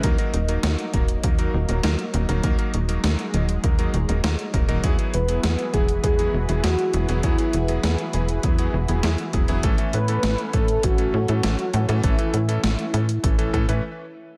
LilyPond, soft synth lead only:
\new Staff \with { instrumentName = "Soft synth lead" } { \time 4/4 \key e \major \tempo 4 = 100 r1 | r1 | r8 b'4 gis'8 gis'4 fis'4 | e'2 r2 |
r8 b'4 a'8 fis'2 | e'2. r4 | }